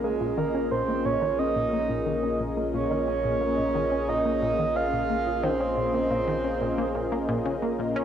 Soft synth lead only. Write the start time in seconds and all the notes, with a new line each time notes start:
0.04 G#4
0.38 A#4
0.71 C5
1.05 C#5
1.39 D#5
2.74 C#5
4.09 D#5
4.76 F5
5.43 C5